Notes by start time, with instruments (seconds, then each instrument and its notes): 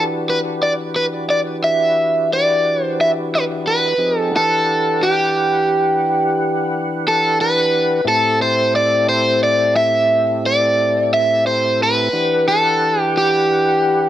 Already playing: tonewheel organ E3 D4 F#4 G4 B4
0.30 overdriven electric guitar B4
0.63 overdriven electric guitar D5
0.96 overdriven electric guitar B4
1.30 overdriven electric guitar D5
1.64 overdriven electric guitar E5
2.33 overdriven electric guitar D5
2.83 overdriven electric guitar C5
3.01 overdriven electric guitar E5
3.35 overdriven electric guitar B4
3.68 overdriven electric guitar B4
3.98 tonewheel organ F3 C4 D#4 G4 G#4
4.19 overdriven electric guitar A4
4.31 tonewheel organ E3 D4 G4 B4 F#5
4.36 overdriven electric guitar A4
5.03 overdriven electric guitar G4
7.08 overdriven electric guitar A4
7.41 overdriven electric guitar B4
8.04 tonewheel organ A2 C4 E4 G4 A4, overdriven electric guitar A4
8.42 overdriven electric guitar C5
8.76 overdriven electric guitar D5
9.09 overdriven electric guitar C5
9.43 overdriven electric guitar D5
9.76 overdriven electric guitar E5
10.46 overdriven electric guitar D5
11.14 overdriven electric guitar E5
11.47 overdriven electric guitar C5
11.83 overdriven electric guitar B4
12.13 tonewheel organ E3 D4 G4 B4 F#5
12.48 overdriven electric guitar A4
13.00 overdriven electric guitar G4
13.18 overdriven electric guitar G4